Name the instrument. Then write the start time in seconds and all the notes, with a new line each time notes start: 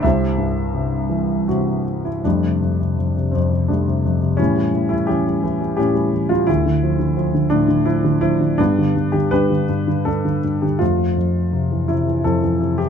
grand piano
0.03 C2 E4 G4 C5 E5
0.38 G2
0.74 C3
1.09 E3
1.48 C3 C4 F#4
2.05 E4
2.24 F2 G3 A3 D4
2.43 C3
2.62 F2
2.80 C3
2.99 F2
3.17 C3
3.32 F2 C4
3.52 C3
3.68 F2 G3 A3 D4
3.88 C3
4.05 F2
4.22 C3
4.37 A2 E3 G3 C#4
4.56 G3
4.73 A2
4.89 G3 E4
5.07 E3 C#4 E4 G4
5.27 G3
5.43 E3
5.61 G3
5.77 A2 C#4 E4 G4
5.95 G3
6.13 E3
6.29 G3 F4
6.47 D2 A3 E4
6.66 D3
6.83 F3
7.00 D3
7.17 F3
7.34 D3
7.50 A2 D4
7.68 D3
7.86 F3 E4
8.05 D3
8.21 F3 E4
8.41 D3
8.58 G2 G3 B3 D4
8.79 D3
8.96 G2
9.12 D3 G4
9.31 G2 D4 G4 B4
9.50 D3
9.69 G2
9.88 D3
10.05 G2 D4 A4
10.25 D3
10.44 G2
10.62 D3 G4
10.79 F2 A3 C4 F4
10.98 F3
11.17 F2
11.53 C3
11.72 E3
11.88 C3 E4
12.07 E3
12.24 F2 C4 E4 A4
12.42 E3
12.60 C3
12.78 E3 G4